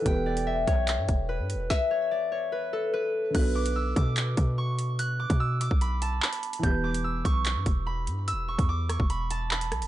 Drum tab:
CC |----------------|----------------|x---------------|----------------|
HH |x--x--x-x-x---x-|----------------|x--x--x-x-x---x-|x--x--x-x-x--xxx|
CP |--------x-------|----------------|--------x-------|------------x---|
SD |----------------|o---------------|----------------|----------------|
BD |o-----o---o-----|o---------------|o-----o---o-----|---o---o--------|

CC |----------------|----------------|
HH |x--x--x-x-x---x-|x--x--x-x-x--xxx|
CP |--------x-------|------------x---|
SD |----------------|------r-------r-|
BD |o-----o---o-----|---o---o--------|